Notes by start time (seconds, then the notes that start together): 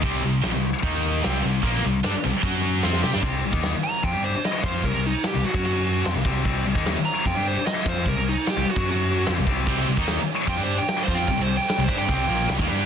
0.03 C2 C3 G3 C4, kick, open hi-hat
0.23 C2 C3 G3
0.42 A#1 A#2 F3, snare, open hi-hat
0.52 C2 C3 G3
0.83 D#2 D#3 A#3 D#4, kick, open hi-hat
1.23 C2 C3 G3 C4, snare, open hi-hat
1.44 C2 C3 G3
1.63 A#1 A#2 F3 A#3, kick, open hi-hat
1.83 C2 C3 G3
2.04 G2 G3 D4, snare, open hi-hat
2.14 muted distorted electric guitar stroke, muted picked electric bass stroke
2.24 C2 C3 G3
2.34 muted distorted electric guitar stroke, muted picked electric bass stroke
2.43 F#2 F#3 C#4 F#4, kick, open hi-hat
2.83 F2 F3 C4 F4, snare
2.93 snare
3.03 C3 C4 G4, snare
3.13 G2 G3 D4, snare
3.22 C2 C3 G3 C4, kick, crash
3.42 C2 C3 G3, crash
3.51 D#2 D#3 A#3 D#4, kick
3.63 snare, crash
3.73 muted distorted electric guitar stroke, muted picked electric bass stroke
3.84 A#5, crash
4.03 F2 F3 C4 G5, kick, crash
4.13 G2 G3 D4 G4
4.24 C5, crash
4.34 muted distorted electric guitar stroke, muted picked electric bass stroke
4.44 D#5, snare, crash
4.63 F2 F3 C4 F4 C5, kick, crash
4.84 C2 C3 G3 A#4, kick, crash
4.94 C2 C3 G3, snare
5.04 D#4, crash
5.23 G4, snare, crash
5.34 C2 C3 G3
5.44 F#4, muted distorted electric guitar stroke, muted picked electric bass stroke, crash
5.54 F#2 F#3 C#4 F#4, kick
5.65 F#4, crash
5.84 crash
6.04 F2 F3 C4, snare, crash
6.15 C2 C3 G3
6.25 C2 C3 G3 C4, kick, crash
6.44 C2 C3 G3 C4, kick, crash
6.65 C2 C3 G3, crash
6.75 D#2 D#3 A#3 D#4, kick, snare
6.86 snare, crash
6.96 muted picked electric bass stroke, muted distorted electric guitar stroke
7.05 A#5, crash
7.25 F2 F3 C4 G5, kick, crash
7.36 G2 G3 D4 G4
7.46 C5, crash
7.56 muted distorted electric guitar stroke, muted picked electric bass stroke
7.66 D#5, snare, crash
7.85 F2 F3 C4 F4 C5, kick, crash
8.05 C2 C3 G3 A#4, kick, crash
8.17 C2 C3 G3
8.26 D#4, crash
8.46 G4, snare, crash
8.57 C2 C3 G3
8.66 muted distorted electric guitar stroke, muted picked electric bass stroke, crash
8.71 F#4
8.76 F#2 F#3 C#4 F#4, kick
8.86 crash
8.91 F#4
9.06 crash
9.26 F2 F3 C4, snare, crash
9.38 C2 C3 G3
9.47 C2 C3 G3 C4, kick, crash
9.66 C2 C3 G3 C4, kick, crash
9.78 snare
9.87 C2 C3 G3, crash
9.97 D#2 D#3 A#3 D#4, kick, snare
10.07 snare, crash
10.18 muted picked electric bass stroke, muted distorted electric guitar stroke
10.28 crash
10.47 F2 F3 C4 G5, kick, crash
10.57 G2 G3 D4 G4
10.63 C5
10.68 crash
10.78 G5, muted distorted electric guitar stroke, muted picked electric bass stroke
10.88 G5, snare, crash
11.03 C5
11.08 F2 F3 C4 F4, kick, crash
11.14 G5
11.28 C2 C3 G3 G5, kick, crash
11.38 C2 C3 G3 C5, snare
11.48 crash
11.57 G5, snare
11.69 G5, snare, crash
11.78 C2 C3 G3
11.84 G3 D4 C5
11.89 G2 G4, kick, crash
11.98 G5
12.07 C2 C3 G3 C4, kick, crash
12.14 G5
12.27 A#1 A#2 F3 A#3, crash
12.48 C2 C3 G3, snare, crash
12.58 D#2 D#3 A#3, kick
12.68 G2 G3 D4 G4, crash